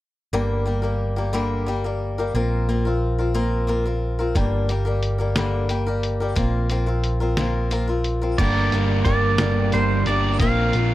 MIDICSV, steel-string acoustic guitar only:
0, 0, Header, 1, 2, 480
1, 0, Start_track
1, 0, Key_signature, -2, "minor"
1, 0, Tempo, 671592
1, 234, Time_signature, 6, 3, 24, 8
1, 7820, End_track
2, 0, Start_track
2, 0, Title_t, "Steel-string acoustic guitar"
2, 0, Program_c, 0, 25
2, 235, Note_on_c, 0, 50, 59
2, 237, Note_on_c, 0, 43, 67
2, 238, Note_on_c, 0, 55, 70
2, 239, Note_on_c, 0, 58, 74
2, 241, Note_on_c, 0, 67, 76
2, 244, Note_on_c, 0, 70, 67
2, 460, Note_off_c, 0, 55, 0
2, 467, Note_off_c, 0, 58, 0
2, 469, Note_on_c, 0, 55, 45
2, 470, Note_off_c, 0, 67, 0
2, 475, Note_off_c, 0, 50, 0
2, 475, Note_off_c, 0, 70, 0
2, 475, Note_on_c, 0, 58, 45
2, 476, Note_off_c, 0, 43, 0
2, 479, Note_on_c, 0, 67, 45
2, 483, Note_on_c, 0, 70, 51
2, 577, Note_off_c, 0, 70, 0
2, 584, Note_off_c, 0, 67, 0
2, 585, Note_on_c, 0, 70, 42
2, 588, Note_off_c, 0, 58, 0
2, 592, Note_off_c, 0, 55, 0
2, 593, Note_on_c, 0, 67, 37
2, 596, Note_on_c, 0, 58, 40
2, 602, Note_on_c, 0, 55, 37
2, 823, Note_off_c, 0, 70, 0
2, 824, Note_off_c, 0, 67, 0
2, 831, Note_on_c, 0, 70, 49
2, 832, Note_on_c, 0, 67, 42
2, 836, Note_off_c, 0, 58, 0
2, 837, Note_off_c, 0, 55, 0
2, 843, Note_on_c, 0, 58, 46
2, 845, Note_on_c, 0, 55, 36
2, 945, Note_off_c, 0, 55, 0
2, 949, Note_off_c, 0, 58, 0
2, 949, Note_on_c, 0, 43, 68
2, 952, Note_on_c, 0, 50, 68
2, 953, Note_off_c, 0, 70, 0
2, 953, Note_on_c, 0, 55, 65
2, 954, Note_off_c, 0, 67, 0
2, 958, Note_on_c, 0, 58, 72
2, 960, Note_on_c, 0, 70, 81
2, 961, Note_on_c, 0, 67, 74
2, 1181, Note_off_c, 0, 55, 0
2, 1190, Note_on_c, 0, 55, 49
2, 1191, Note_off_c, 0, 58, 0
2, 1192, Note_off_c, 0, 43, 0
2, 1193, Note_off_c, 0, 50, 0
2, 1194, Note_off_c, 0, 67, 0
2, 1198, Note_off_c, 0, 70, 0
2, 1200, Note_on_c, 0, 58, 59
2, 1202, Note_on_c, 0, 67, 49
2, 1208, Note_on_c, 0, 70, 57
2, 1308, Note_off_c, 0, 70, 0
2, 1312, Note_off_c, 0, 55, 0
2, 1314, Note_off_c, 0, 67, 0
2, 1317, Note_off_c, 0, 58, 0
2, 1317, Note_on_c, 0, 70, 44
2, 1323, Note_on_c, 0, 67, 41
2, 1329, Note_on_c, 0, 58, 36
2, 1332, Note_on_c, 0, 55, 39
2, 1550, Note_off_c, 0, 70, 0
2, 1557, Note_off_c, 0, 67, 0
2, 1559, Note_on_c, 0, 70, 43
2, 1562, Note_off_c, 0, 58, 0
2, 1563, Note_off_c, 0, 55, 0
2, 1566, Note_on_c, 0, 67, 46
2, 1570, Note_on_c, 0, 58, 44
2, 1572, Note_on_c, 0, 55, 38
2, 1668, Note_off_c, 0, 58, 0
2, 1674, Note_off_c, 0, 55, 0
2, 1677, Note_off_c, 0, 70, 0
2, 1677, Note_on_c, 0, 58, 68
2, 1678, Note_off_c, 0, 67, 0
2, 1678, Note_on_c, 0, 60, 63
2, 1681, Note_on_c, 0, 65, 70
2, 1688, Note_on_c, 0, 70, 72
2, 1912, Note_off_c, 0, 58, 0
2, 1917, Note_off_c, 0, 60, 0
2, 1918, Note_off_c, 0, 65, 0
2, 1920, Note_on_c, 0, 58, 53
2, 1921, Note_off_c, 0, 70, 0
2, 1924, Note_on_c, 0, 60, 42
2, 1927, Note_on_c, 0, 65, 54
2, 1933, Note_on_c, 0, 70, 54
2, 2029, Note_off_c, 0, 70, 0
2, 2037, Note_on_c, 0, 70, 43
2, 2038, Note_off_c, 0, 58, 0
2, 2039, Note_off_c, 0, 60, 0
2, 2039, Note_off_c, 0, 65, 0
2, 2047, Note_on_c, 0, 65, 42
2, 2052, Note_on_c, 0, 60, 38
2, 2267, Note_off_c, 0, 70, 0
2, 2272, Note_off_c, 0, 65, 0
2, 2276, Note_on_c, 0, 70, 44
2, 2280, Note_on_c, 0, 65, 45
2, 2281, Note_off_c, 0, 60, 0
2, 2290, Note_on_c, 0, 60, 39
2, 2382, Note_off_c, 0, 60, 0
2, 2387, Note_off_c, 0, 65, 0
2, 2388, Note_off_c, 0, 70, 0
2, 2390, Note_on_c, 0, 58, 66
2, 2390, Note_on_c, 0, 60, 68
2, 2396, Note_on_c, 0, 65, 67
2, 2397, Note_on_c, 0, 70, 83
2, 2615, Note_off_c, 0, 58, 0
2, 2624, Note_off_c, 0, 60, 0
2, 2624, Note_on_c, 0, 58, 50
2, 2628, Note_off_c, 0, 65, 0
2, 2629, Note_off_c, 0, 70, 0
2, 2632, Note_on_c, 0, 60, 54
2, 2637, Note_on_c, 0, 65, 61
2, 2638, Note_on_c, 0, 70, 62
2, 2747, Note_off_c, 0, 70, 0
2, 2749, Note_off_c, 0, 58, 0
2, 2754, Note_off_c, 0, 60, 0
2, 2754, Note_off_c, 0, 65, 0
2, 2755, Note_on_c, 0, 70, 45
2, 2762, Note_on_c, 0, 65, 45
2, 2769, Note_on_c, 0, 60, 36
2, 2984, Note_off_c, 0, 70, 0
2, 2991, Note_off_c, 0, 65, 0
2, 2993, Note_on_c, 0, 70, 48
2, 2996, Note_off_c, 0, 60, 0
2, 3000, Note_on_c, 0, 65, 41
2, 3005, Note_on_c, 0, 60, 43
2, 3108, Note_on_c, 0, 43, 64
2, 3110, Note_off_c, 0, 70, 0
2, 3113, Note_off_c, 0, 60, 0
2, 3113, Note_off_c, 0, 65, 0
2, 3113, Note_on_c, 0, 50, 66
2, 3114, Note_on_c, 0, 55, 70
2, 3116, Note_on_c, 0, 58, 60
2, 3116, Note_on_c, 0, 67, 74
2, 3119, Note_on_c, 0, 70, 77
2, 3342, Note_off_c, 0, 55, 0
2, 3349, Note_off_c, 0, 58, 0
2, 3350, Note_on_c, 0, 55, 46
2, 3352, Note_off_c, 0, 43, 0
2, 3354, Note_off_c, 0, 50, 0
2, 3356, Note_off_c, 0, 67, 0
2, 3357, Note_off_c, 0, 70, 0
2, 3358, Note_on_c, 0, 58, 43
2, 3365, Note_on_c, 0, 67, 50
2, 3365, Note_on_c, 0, 70, 56
2, 3457, Note_off_c, 0, 70, 0
2, 3464, Note_off_c, 0, 67, 0
2, 3466, Note_on_c, 0, 70, 48
2, 3470, Note_off_c, 0, 58, 0
2, 3473, Note_off_c, 0, 55, 0
2, 3473, Note_on_c, 0, 67, 46
2, 3478, Note_on_c, 0, 58, 37
2, 3484, Note_on_c, 0, 55, 39
2, 3697, Note_off_c, 0, 70, 0
2, 3704, Note_off_c, 0, 67, 0
2, 3705, Note_on_c, 0, 70, 45
2, 3708, Note_off_c, 0, 58, 0
2, 3712, Note_on_c, 0, 67, 40
2, 3713, Note_off_c, 0, 55, 0
2, 3716, Note_on_c, 0, 58, 39
2, 3722, Note_on_c, 0, 55, 41
2, 3829, Note_off_c, 0, 55, 0
2, 3829, Note_off_c, 0, 58, 0
2, 3830, Note_off_c, 0, 70, 0
2, 3832, Note_on_c, 0, 43, 73
2, 3834, Note_off_c, 0, 67, 0
2, 3837, Note_on_c, 0, 50, 70
2, 3837, Note_on_c, 0, 55, 74
2, 3838, Note_on_c, 0, 58, 74
2, 3841, Note_on_c, 0, 67, 73
2, 3844, Note_on_c, 0, 70, 79
2, 4061, Note_off_c, 0, 55, 0
2, 4066, Note_off_c, 0, 58, 0
2, 4068, Note_off_c, 0, 67, 0
2, 4070, Note_on_c, 0, 55, 52
2, 4072, Note_off_c, 0, 70, 0
2, 4074, Note_off_c, 0, 43, 0
2, 4075, Note_on_c, 0, 58, 54
2, 4076, Note_on_c, 0, 67, 56
2, 4077, Note_off_c, 0, 50, 0
2, 4081, Note_on_c, 0, 70, 55
2, 4183, Note_off_c, 0, 70, 0
2, 4190, Note_off_c, 0, 67, 0
2, 4192, Note_on_c, 0, 70, 48
2, 4193, Note_off_c, 0, 55, 0
2, 4195, Note_off_c, 0, 58, 0
2, 4199, Note_on_c, 0, 67, 42
2, 4204, Note_on_c, 0, 58, 41
2, 4205, Note_on_c, 0, 55, 38
2, 4424, Note_off_c, 0, 70, 0
2, 4432, Note_off_c, 0, 67, 0
2, 4433, Note_on_c, 0, 70, 44
2, 4436, Note_off_c, 0, 58, 0
2, 4440, Note_off_c, 0, 55, 0
2, 4441, Note_on_c, 0, 67, 46
2, 4444, Note_on_c, 0, 58, 41
2, 4450, Note_on_c, 0, 55, 43
2, 4534, Note_off_c, 0, 58, 0
2, 4539, Note_off_c, 0, 55, 0
2, 4542, Note_on_c, 0, 58, 65
2, 4548, Note_off_c, 0, 70, 0
2, 4548, Note_on_c, 0, 60, 59
2, 4549, Note_off_c, 0, 67, 0
2, 4552, Note_on_c, 0, 65, 76
2, 4557, Note_on_c, 0, 70, 67
2, 4778, Note_off_c, 0, 58, 0
2, 4784, Note_off_c, 0, 60, 0
2, 4786, Note_on_c, 0, 58, 46
2, 4789, Note_off_c, 0, 65, 0
2, 4792, Note_off_c, 0, 70, 0
2, 4793, Note_on_c, 0, 60, 48
2, 4797, Note_on_c, 0, 65, 58
2, 4800, Note_on_c, 0, 70, 54
2, 4896, Note_off_c, 0, 70, 0
2, 4901, Note_off_c, 0, 65, 0
2, 4905, Note_on_c, 0, 70, 43
2, 4910, Note_on_c, 0, 65, 44
2, 4911, Note_off_c, 0, 58, 0
2, 4912, Note_off_c, 0, 60, 0
2, 4920, Note_on_c, 0, 60, 36
2, 5139, Note_off_c, 0, 70, 0
2, 5145, Note_off_c, 0, 65, 0
2, 5147, Note_on_c, 0, 70, 41
2, 5153, Note_on_c, 0, 65, 44
2, 5154, Note_off_c, 0, 60, 0
2, 5162, Note_on_c, 0, 60, 37
2, 5263, Note_off_c, 0, 60, 0
2, 5265, Note_off_c, 0, 65, 0
2, 5268, Note_on_c, 0, 58, 63
2, 5271, Note_on_c, 0, 60, 71
2, 5272, Note_off_c, 0, 70, 0
2, 5273, Note_on_c, 0, 65, 76
2, 5280, Note_on_c, 0, 70, 81
2, 5500, Note_off_c, 0, 58, 0
2, 5503, Note_off_c, 0, 60, 0
2, 5508, Note_on_c, 0, 58, 55
2, 5510, Note_off_c, 0, 65, 0
2, 5511, Note_off_c, 0, 70, 0
2, 5511, Note_on_c, 0, 60, 58
2, 5518, Note_on_c, 0, 65, 60
2, 5520, Note_on_c, 0, 70, 64
2, 5621, Note_off_c, 0, 70, 0
2, 5629, Note_on_c, 0, 70, 44
2, 5630, Note_off_c, 0, 65, 0
2, 5632, Note_off_c, 0, 58, 0
2, 5634, Note_off_c, 0, 60, 0
2, 5639, Note_on_c, 0, 65, 44
2, 5642, Note_on_c, 0, 60, 39
2, 5863, Note_off_c, 0, 70, 0
2, 5871, Note_off_c, 0, 65, 0
2, 5872, Note_on_c, 0, 70, 44
2, 5873, Note_off_c, 0, 60, 0
2, 5880, Note_on_c, 0, 65, 47
2, 5882, Note_on_c, 0, 60, 39
2, 5994, Note_off_c, 0, 70, 0
2, 5994, Note_on_c, 0, 43, 68
2, 5997, Note_off_c, 0, 60, 0
2, 5997, Note_on_c, 0, 55, 64
2, 5998, Note_off_c, 0, 65, 0
2, 5998, Note_on_c, 0, 50, 63
2, 5999, Note_on_c, 0, 58, 71
2, 6000, Note_on_c, 0, 67, 76
2, 6003, Note_on_c, 0, 70, 71
2, 6231, Note_off_c, 0, 70, 0
2, 6234, Note_off_c, 0, 67, 0
2, 6236, Note_off_c, 0, 43, 0
2, 6237, Note_off_c, 0, 50, 0
2, 6237, Note_off_c, 0, 55, 0
2, 6238, Note_off_c, 0, 58, 0
2, 6240, Note_on_c, 0, 70, 41
2, 6243, Note_on_c, 0, 67, 45
2, 6248, Note_on_c, 0, 58, 42
2, 6253, Note_on_c, 0, 55, 39
2, 6457, Note_off_c, 0, 55, 0
2, 6465, Note_off_c, 0, 58, 0
2, 6466, Note_off_c, 0, 67, 0
2, 6466, Note_on_c, 0, 55, 56
2, 6469, Note_off_c, 0, 70, 0
2, 6473, Note_on_c, 0, 58, 60
2, 6475, Note_on_c, 0, 67, 52
2, 6478, Note_on_c, 0, 70, 65
2, 6704, Note_off_c, 0, 70, 0
2, 6707, Note_off_c, 0, 67, 0
2, 6711, Note_off_c, 0, 55, 0
2, 6711, Note_off_c, 0, 58, 0
2, 6713, Note_on_c, 0, 70, 62
2, 6715, Note_on_c, 0, 67, 60
2, 6720, Note_on_c, 0, 55, 59
2, 6720, Note_on_c, 0, 58, 56
2, 6721, Note_on_c, 0, 50, 55
2, 6722, Note_on_c, 0, 43, 49
2, 6941, Note_off_c, 0, 55, 0
2, 6944, Note_off_c, 0, 58, 0
2, 6950, Note_on_c, 0, 55, 54
2, 6952, Note_off_c, 0, 67, 0
2, 6952, Note_on_c, 0, 58, 65
2, 6955, Note_off_c, 0, 70, 0
2, 6959, Note_off_c, 0, 43, 0
2, 6959, Note_off_c, 0, 50, 0
2, 6961, Note_on_c, 0, 67, 52
2, 6965, Note_on_c, 0, 70, 63
2, 7189, Note_off_c, 0, 70, 0
2, 7193, Note_off_c, 0, 67, 0
2, 7194, Note_off_c, 0, 55, 0
2, 7195, Note_off_c, 0, 58, 0
2, 7198, Note_on_c, 0, 70, 49
2, 7202, Note_on_c, 0, 67, 43
2, 7204, Note_on_c, 0, 58, 42
2, 7209, Note_on_c, 0, 55, 41
2, 7433, Note_off_c, 0, 58, 0
2, 7438, Note_off_c, 0, 55, 0
2, 7438, Note_off_c, 0, 70, 0
2, 7440, Note_off_c, 0, 67, 0
2, 7441, Note_on_c, 0, 58, 65
2, 7441, Note_on_c, 0, 60, 64
2, 7445, Note_on_c, 0, 65, 81
2, 7449, Note_on_c, 0, 70, 72
2, 7670, Note_off_c, 0, 70, 0
2, 7678, Note_on_c, 0, 70, 44
2, 7679, Note_off_c, 0, 58, 0
2, 7679, Note_off_c, 0, 60, 0
2, 7679, Note_off_c, 0, 65, 0
2, 7687, Note_on_c, 0, 65, 39
2, 7694, Note_on_c, 0, 60, 38
2, 7820, Note_off_c, 0, 60, 0
2, 7820, Note_off_c, 0, 65, 0
2, 7820, Note_off_c, 0, 70, 0
2, 7820, End_track
0, 0, End_of_file